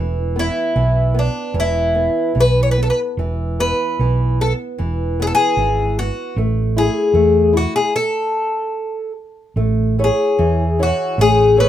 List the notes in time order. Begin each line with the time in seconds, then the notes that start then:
Already playing: E1 E3
0.36 B3 E4
0.76 B1 E3
1.14 B3
1.19 D4
1.54 E1 E3
1.60 E4
1.95 B3
2.35 B1 E3
2.40 B4
2.63 C#5
2.71 B4
2.77 B3
2.83 A4
2.90 B4
3.17 E1 E3
3.59 B3 B4
3.99 B1 E3
4.41 B3 A4
4.78 E1 E3
5.20 B3 G#4
5.27 A4
5.35 G#4
5.57 G#1 E3
5.99 B3 F#4
6.36 A1 A3
6.77 E4 G#4
7.14 E2 A3
7.53 E4 F#4
7.76 G#4
7.96 A4
9.56 A1 A3
9.99 E4 G#4 C#5
10.04 G#4
10.39 E2 E3
10.79 E4 F#4 G#4 C#5
11.18 A1 A3 G#4
11.57 G#4 A4 B4 C#5